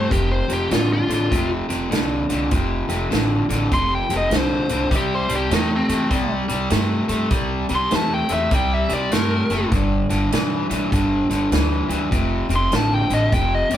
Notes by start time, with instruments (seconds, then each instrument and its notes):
0.09 upright bass F1, overdriven electric guitar F2 C3, lead electric guitar G4, kick, snare, closed hi-hat
0.32 lead electric guitar C5
0.48 upright bass F1, overdriven electric guitar F2 C3, snare, closed hi-hat
0.53 lead electric guitar G4
0.70 upright bass A1, overdriven electric guitar F2 D3, lead electric guitar F4, snare, closed hi-hat
0.93 lead electric guitar F4
1.08 upright bass A1, overdriven electric guitar F2 D3, snare, closed hi-hat
1.30 upright bass F1, overdriven electric guitar F2 C3, kick, snare, closed hi-hat
1.69 upright bass F1, overdriven electric guitar F2 C3, snare, closed hi-hat
1.90 upright bass C2, overdriven electric guitar F2 D3, snare, closed hi-hat
2.29 upright bass C2, overdriven electric guitar F2 D3, snare, closed hi-hat
2.51 upright bass F1, overdriven electric guitar F2 C3, kick, snare, closed hi-hat
2.88 upright bass F1, overdriven electric guitar F2 C3, snare, closed hi-hat
3.10 upright bass A1, overdriven electric guitar F2 D3, snare, closed hi-hat
3.49 upright bass A1, overdriven electric guitar F2 D3, snare, closed hi-hat
3.71 upright bass F1, overdriven electric guitar F2 C3, lead electric guitar C6, kick, snare, closed hi-hat
3.95 lead electric guitar G5
4.09 upright bass F1, overdriven electric guitar F2 C3, snare, closed hi-hat
4.17 lead electric guitar D#5
4.31 upright bass C2, overdriven electric guitar F2 D3, snare, closed hi-hat
4.36 lead electric guitar C5
4.69 upright bass C2, overdriven electric guitar F2 D3, snare, closed hi-hat
4.91 upright bass C2, overdriven electric guitar C3 G3, kick, snare, closed hi-hat
4.96 lead electric guitar G4
5.15 lead electric guitar C5
5.29 upright bass C2, overdriven electric guitar C3 G3, snare, closed hi-hat
5.36 lead electric guitar G4
5.51 upright bass E2, overdriven electric guitar C3 A3, snare, closed hi-hat
5.55 lead electric guitar D#4
5.76 lead electric guitar C4
5.88 upright bass E2, overdriven electric guitar C3 A3, snare, closed hi-hat
6.10 upright bass C2, overdriven electric guitar C3 G3, kick, snare, closed hi-hat
6.48 upright bass C2, overdriven electric guitar C3 G3, snare, closed hi-hat
6.70 upright bass G2, overdriven electric guitar C3 A3, snare, closed hi-hat
7.08 upright bass G2, overdriven electric guitar C3 A3, snare, closed hi-hat
7.30 upright bass C2, overdriven electric guitar C3 G3, kick, snare, closed hi-hat
7.69 upright bass C2, overdriven electric guitar C3 G3, snare, closed hi-hat
7.75 lead electric guitar C6
7.91 upright bass E2, overdriven electric guitar C3 A3, snare, closed hi-hat
7.95 lead electric guitar A5
8.14 lead electric guitar G5
8.29 upright bass E2, overdriven electric guitar C3 A3, snare, closed hi-hat
8.33 lead electric guitar E5
8.51 upright bass C2, overdriven electric guitar C3 G3, lead electric guitar G5, kick, snare, closed hi-hat
8.74 lead electric guitar E5
8.89 upright bass C2, overdriven electric guitar C3 G3, snare, closed hi-hat
8.94 lead electric guitar D5
9.11 upright bass G2, overdriven electric guitar C3 A3, lead electric guitar A#4, snare, closed hi-hat
9.50 upright bass F#1, overdriven electric guitar C3 A3, snare, closed hi-hat
9.72 upright bass G1, overdriven electric guitar G2 D3, kick, snare, closed hi-hat
10.09 upright bass G1, overdriven electric guitar G2 D3, snare, closed hi-hat
10.32 upright bass B1, overdriven electric guitar G2 E3, snare, closed hi-hat
10.70 upright bass B1, overdriven electric guitar G2 E3, snare, closed hi-hat
10.92 upright bass G1, overdriven electric guitar G2 D3, kick, snare, closed hi-hat
11.30 upright bass G1, overdriven electric guitar G2 D3, snare, closed hi-hat
11.51 upright bass D2, overdriven electric guitar G2 E3, snare, closed hi-hat
11.89 upright bass D2, overdriven electric guitar G2 E3, snare, closed hi-hat
12.11 upright bass F1, overdriven electric guitar F2 C3, kick, snare, closed hi-hat
12.49 upright bass F1, overdriven electric guitar F2 C3, snare, closed hi-hat
12.56 lead electric guitar C6
12.72 upright bass A1, overdriven electric guitar F2 D3, lead electric guitar A5, snare, closed hi-hat
12.94 lead electric guitar G5
13.09 upright bass A1, overdriven electric guitar F2 D3, snare, closed hi-hat
13.14 lead electric guitar D#5
13.32 upright bass F1, overdriven electric guitar F2 C3, lead electric guitar G5, kick, snare, closed hi-hat
13.55 lead electric guitar D#5
13.70 upright bass F1, overdriven electric guitar F2 C3, snare, closed hi-hat